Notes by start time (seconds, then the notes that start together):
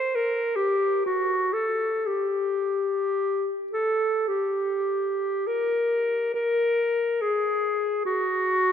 Already playing: C5
0.15 A#4
0.56 G4
1.06 F#4
1.53 A4
2.07 G4
3.72 A4
4.28 G4
5.47 A#4
6.34 A#4
7.22 G#4
8.05 F#4